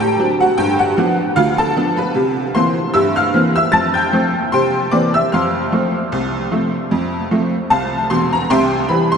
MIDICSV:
0, 0, Header, 1, 2, 480
1, 0, Start_track
1, 0, Key_signature, -1, "major"
1, 0, Tempo, 790514
1, 353, Time_signature, 2, 2, 24, 8
1, 5571, End_track
2, 0, Start_track
2, 0, Title_t, "Honky-tonk piano"
2, 0, Program_c, 0, 3
2, 0, Note_on_c, 0, 45, 84
2, 2, Note_on_c, 0, 79, 91
2, 8, Note_on_c, 0, 67, 75
2, 78, Note_off_c, 0, 45, 0
2, 114, Note_on_c, 0, 54, 53
2, 118, Note_on_c, 0, 60, 50
2, 120, Note_on_c, 0, 62, 55
2, 195, Note_off_c, 0, 79, 0
2, 230, Note_off_c, 0, 67, 0
2, 245, Note_off_c, 0, 54, 0
2, 245, Note_on_c, 0, 78, 89
2, 248, Note_off_c, 0, 60, 0
2, 249, Note_off_c, 0, 62, 0
2, 252, Note_on_c, 0, 66, 66
2, 348, Note_off_c, 0, 66, 0
2, 350, Note_on_c, 0, 79, 94
2, 352, Note_off_c, 0, 78, 0
2, 353, Note_on_c, 0, 43, 94
2, 359, Note_on_c, 0, 67, 73
2, 478, Note_off_c, 0, 67, 0
2, 480, Note_on_c, 0, 78, 81
2, 483, Note_off_c, 0, 79, 0
2, 489, Note_on_c, 0, 66, 62
2, 555, Note_off_c, 0, 43, 0
2, 591, Note_on_c, 0, 53, 56
2, 593, Note_on_c, 0, 59, 51
2, 595, Note_on_c, 0, 62, 56
2, 722, Note_off_c, 0, 53, 0
2, 723, Note_off_c, 0, 59, 0
2, 725, Note_off_c, 0, 62, 0
2, 808, Note_off_c, 0, 66, 0
2, 810, Note_off_c, 0, 78, 0
2, 825, Note_on_c, 0, 77, 100
2, 828, Note_on_c, 0, 38, 88
2, 832, Note_on_c, 0, 65, 79
2, 954, Note_off_c, 0, 65, 0
2, 960, Note_off_c, 0, 77, 0
2, 962, Note_on_c, 0, 81, 105
2, 967, Note_on_c, 0, 69, 79
2, 1032, Note_off_c, 0, 38, 0
2, 1070, Note_on_c, 0, 53, 49
2, 1073, Note_on_c, 0, 59, 58
2, 1075, Note_on_c, 0, 62, 58
2, 1187, Note_off_c, 0, 69, 0
2, 1189, Note_off_c, 0, 81, 0
2, 1196, Note_on_c, 0, 83, 77
2, 1201, Note_off_c, 0, 53, 0
2, 1204, Note_off_c, 0, 59, 0
2, 1205, Note_off_c, 0, 62, 0
2, 1205, Note_on_c, 0, 71, 62
2, 1301, Note_on_c, 0, 48, 89
2, 1303, Note_off_c, 0, 71, 0
2, 1306, Note_off_c, 0, 83, 0
2, 1508, Note_off_c, 0, 48, 0
2, 1546, Note_on_c, 0, 84, 88
2, 1549, Note_on_c, 0, 52, 49
2, 1551, Note_on_c, 0, 58, 53
2, 1552, Note_on_c, 0, 60, 55
2, 1552, Note_on_c, 0, 72, 67
2, 1680, Note_off_c, 0, 52, 0
2, 1682, Note_off_c, 0, 58, 0
2, 1682, Note_off_c, 0, 60, 0
2, 1773, Note_off_c, 0, 72, 0
2, 1774, Note_off_c, 0, 84, 0
2, 1783, Note_on_c, 0, 88, 95
2, 1785, Note_on_c, 0, 43, 85
2, 1789, Note_on_c, 0, 76, 75
2, 1911, Note_off_c, 0, 76, 0
2, 1917, Note_off_c, 0, 88, 0
2, 1918, Note_on_c, 0, 89, 98
2, 1924, Note_on_c, 0, 77, 73
2, 1989, Note_off_c, 0, 43, 0
2, 2027, Note_on_c, 0, 52, 54
2, 2029, Note_on_c, 0, 58, 52
2, 2031, Note_on_c, 0, 60, 52
2, 2110, Note_off_c, 0, 89, 0
2, 2144, Note_off_c, 0, 77, 0
2, 2159, Note_off_c, 0, 52, 0
2, 2159, Note_on_c, 0, 88, 102
2, 2160, Note_off_c, 0, 58, 0
2, 2162, Note_off_c, 0, 60, 0
2, 2166, Note_on_c, 0, 76, 76
2, 2258, Note_on_c, 0, 93, 102
2, 2262, Note_off_c, 0, 76, 0
2, 2264, Note_on_c, 0, 41, 72
2, 2266, Note_off_c, 0, 88, 0
2, 2267, Note_on_c, 0, 81, 76
2, 2390, Note_off_c, 0, 81, 0
2, 2392, Note_on_c, 0, 91, 78
2, 2394, Note_off_c, 0, 93, 0
2, 2399, Note_on_c, 0, 79, 65
2, 2468, Note_off_c, 0, 41, 0
2, 2506, Note_on_c, 0, 53, 53
2, 2507, Note_on_c, 0, 57, 41
2, 2509, Note_on_c, 0, 60, 52
2, 2638, Note_off_c, 0, 53, 0
2, 2639, Note_off_c, 0, 57, 0
2, 2640, Note_off_c, 0, 60, 0
2, 2722, Note_off_c, 0, 79, 0
2, 2725, Note_off_c, 0, 91, 0
2, 2746, Note_on_c, 0, 84, 77
2, 2750, Note_on_c, 0, 48, 82
2, 2754, Note_on_c, 0, 72, 55
2, 2754, Note_on_c, 0, 79, 60
2, 2953, Note_off_c, 0, 48, 0
2, 2974, Note_off_c, 0, 72, 0
2, 2974, Note_off_c, 0, 79, 0
2, 2974, Note_off_c, 0, 84, 0
2, 2984, Note_on_c, 0, 86, 73
2, 2988, Note_on_c, 0, 52, 49
2, 2988, Note_on_c, 0, 58, 42
2, 2989, Note_on_c, 0, 74, 58
2, 2993, Note_on_c, 0, 60, 53
2, 3112, Note_off_c, 0, 74, 0
2, 3119, Note_off_c, 0, 86, 0
2, 3120, Note_off_c, 0, 58, 0
2, 3121, Note_off_c, 0, 52, 0
2, 3122, Note_on_c, 0, 88, 85
2, 3124, Note_off_c, 0, 60, 0
2, 3129, Note_on_c, 0, 76, 58
2, 3225, Note_off_c, 0, 76, 0
2, 3229, Note_off_c, 0, 88, 0
2, 3232, Note_on_c, 0, 89, 66
2, 3238, Note_on_c, 0, 41, 65
2, 3241, Note_on_c, 0, 77, 50
2, 3241, Note_on_c, 0, 84, 51
2, 3439, Note_off_c, 0, 41, 0
2, 3474, Note_on_c, 0, 53, 38
2, 3475, Note_on_c, 0, 57, 39
2, 3480, Note_on_c, 0, 60, 40
2, 3605, Note_off_c, 0, 53, 0
2, 3606, Note_off_c, 0, 57, 0
2, 3610, Note_off_c, 0, 60, 0
2, 3717, Note_on_c, 0, 36, 65
2, 3919, Note_off_c, 0, 36, 0
2, 3956, Note_on_c, 0, 53, 36
2, 3958, Note_on_c, 0, 57, 41
2, 3963, Note_on_c, 0, 60, 42
2, 4087, Note_off_c, 0, 53, 0
2, 4089, Note_off_c, 0, 57, 0
2, 4092, Note_off_c, 0, 60, 0
2, 4197, Note_on_c, 0, 41, 64
2, 4400, Note_off_c, 0, 41, 0
2, 4439, Note_on_c, 0, 53, 42
2, 4441, Note_on_c, 0, 57, 41
2, 4445, Note_on_c, 0, 60, 41
2, 4570, Note_off_c, 0, 53, 0
2, 4571, Note_off_c, 0, 57, 0
2, 4575, Note_off_c, 0, 60, 0
2, 4581, Note_off_c, 0, 89, 0
2, 4673, Note_off_c, 0, 77, 0
2, 4677, Note_on_c, 0, 81, 74
2, 4679, Note_on_c, 0, 36, 59
2, 4682, Note_on_c, 0, 77, 58
2, 4684, Note_on_c, 0, 72, 60
2, 4882, Note_off_c, 0, 36, 0
2, 4899, Note_off_c, 0, 84, 0
2, 4903, Note_off_c, 0, 77, 0
2, 4904, Note_off_c, 0, 72, 0
2, 4905, Note_off_c, 0, 81, 0
2, 4918, Note_on_c, 0, 84, 83
2, 4921, Note_on_c, 0, 40, 57
2, 4922, Note_on_c, 0, 28, 67
2, 5050, Note_off_c, 0, 84, 0
2, 5056, Note_on_c, 0, 82, 79
2, 5112, Note_off_c, 0, 28, 0
2, 5112, Note_off_c, 0, 40, 0
2, 5160, Note_off_c, 0, 82, 0
2, 5161, Note_on_c, 0, 84, 98
2, 5163, Note_on_c, 0, 48, 86
2, 5164, Note_on_c, 0, 36, 75
2, 5165, Note_on_c, 0, 79, 68
2, 5167, Note_on_c, 0, 76, 69
2, 5365, Note_off_c, 0, 36, 0
2, 5365, Note_off_c, 0, 48, 0
2, 5385, Note_off_c, 0, 79, 0
2, 5386, Note_off_c, 0, 76, 0
2, 5388, Note_off_c, 0, 84, 0
2, 5395, Note_on_c, 0, 83, 86
2, 5400, Note_on_c, 0, 52, 55
2, 5402, Note_on_c, 0, 55, 50
2, 5406, Note_on_c, 0, 60, 55
2, 5529, Note_off_c, 0, 83, 0
2, 5531, Note_off_c, 0, 52, 0
2, 5533, Note_off_c, 0, 55, 0
2, 5536, Note_off_c, 0, 60, 0
2, 5536, Note_on_c, 0, 84, 96
2, 5571, Note_off_c, 0, 84, 0
2, 5571, End_track
0, 0, End_of_file